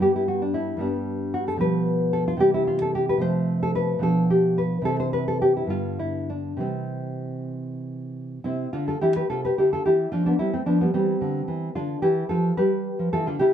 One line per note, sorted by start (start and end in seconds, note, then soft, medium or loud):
0.00 0.76 G2 soft
0.00 0.77 G3 soft
0.00 0.78 B3 soft
0.00 0.15 G4 medium
0.16 0.28 E4 medium
0.28 0.42 F#4 medium
0.42 0.55 D4 medium
0.54 0.80 E4 medium
0.77 1.56 G2 medium
0.77 1.57 G3 soft
0.77 1.58 B3 soft
0.77 1.32 D4 medium
1.34 1.47 F#4 medium
1.48 1.60 A4 medium
1.57 2.36 B2 medium
1.57 2.38 F3 soft
1.57 2.38 G3 soft
1.61 2.12 B4 medium
2.13 2.27 A4 medium
2.28 2.40 F4 medium
2.37 3.16 C3 medium
2.37 3.18 E3 soft
2.37 3.19 G3 soft
2.37 2.54 G4 medium
2.54 2.67 E4 medium
2.67 2.81 F4 medium
2.82 2.95 A4 medium
2.95 3.09 G4 medium
3.09 3.21 B4 medium
3.17 3.98 C3 medium
3.17 3.99 F3 soft
3.17 4.00 A3 soft
3.17 3.60 C5 loud
3.63 3.75 A4 medium
3.75 4.02 B4 medium
3.99 4.81 B2 medium
3.99 4.82 F3 soft
3.99 4.83 D4 soft
3.99 4.30 A4 medium
4.30 4.57 G4 medium
4.58 4.85 B4 medium
4.82 5.66 C3 medium
4.82 5.67 E3 soft
4.82 5.68 C4 soft
4.82 4.99 A4 medium
5.00 5.13 C5 medium
5.13 5.27 B4 medium
5.28 5.41 A4 medium
5.42 5.56 G4 medium
5.57 5.71 E4 medium
5.66 6.57 G2 medium
5.66 6.58 D3 soft
5.66 6.58 B3 soft
5.66 5.99 F4 medium
5.99 6.29 E4 medium
6.30 6.60 D4 medium
6.57 8.38 C3 soft
6.57 8.39 E3 soft
6.57 8.40 G3 soft
6.57 7.50 C4 medium
8.44 8.66 C3 medium
8.44 8.72 C4 medium
8.44 8.72 E4 medium
8.73 8.94 D3 medium
8.73 8.87 D4 medium
8.73 8.88 F4 medium
8.88 9.01 F4 medium
8.88 9.02 A4 medium
9.01 9.22 E3 medium
9.01 9.15 E4 medium
9.01 9.16 G4 medium
9.16 9.30 G4 medium
9.16 9.29 B4 medium
9.30 9.50 C3 medium
9.30 9.44 F4 medium
9.30 9.44 A4 medium
9.45 9.57 G4 medium
9.45 9.58 B4 medium
9.58 9.78 D3 medium
9.58 9.72 E4 medium
9.58 9.72 G4 medium
9.73 9.85 F4 medium
9.73 9.86 A4 medium
9.86 10.06 E3 medium
9.86 10.12 E4 medium
9.86 10.11 G4 medium
10.12 10.33 F3 medium
10.12 10.25 D4 medium
10.12 10.26 F4 medium
10.26 10.40 B3 medium
10.26 10.39 D4 medium
10.39 10.54 G3 medium
10.39 10.52 C4 medium
10.39 10.53 E4 medium
10.54 10.67 A3 medium
10.54 10.66 C4 medium
10.66 10.87 F3 medium
10.66 10.80 B3 medium
10.66 10.81 D4 medium
10.81 10.93 G3 medium
10.81 10.94 B3 medium
10.94 11.14 E3 medium
10.94 11.73 G3 medium
10.94 11.73 C4 medium
11.21 11.41 D3 medium
11.48 11.68 E3 medium
11.75 11.96 D3 medium
11.75 12.02 D4 medium
11.75 12.02 F4 medium
12.02 12.23 E3 medium
12.02 12.29 E4 medium
12.02 12.29 G4 medium
12.29 12.50 F3 medium
12.29 12.56 F4 medium
12.29 12.56 A4 medium
12.57 12.88 G3 medium
12.57 13.09 G4 medium
12.57 13.10 B4 medium
12.99 13.12 F3 medium
13.13 13.26 E3 medium
13.13 13.26 F4 medium
13.13 13.27 A4 medium
13.26 13.40 D3 medium
13.26 13.40 D4 medium
13.26 13.39 F4 medium
13.39 13.54 C#3 medium
13.39 13.53 E4 medium
13.39 13.54 G4 medium